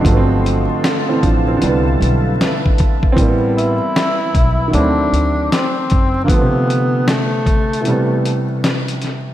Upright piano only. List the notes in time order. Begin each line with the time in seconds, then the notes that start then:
Already playing: F#3 D4
0.01 D3 F3
0.07 A3 B3
0.17 C4
1.09 E3 C4
1.23 F3 D4
1.48 E3 C4
1.57 D3 E3
1.63 G3 B3
3.12 E3 C4
3.19 G3 A#3
3.28 B3
4.68 D#3 F#3
4.74 A3 C4
6.24 D3 F3
6.31 A3 B3
6.40 C3
7.80 B2 E3
7.87 C3 G3 B3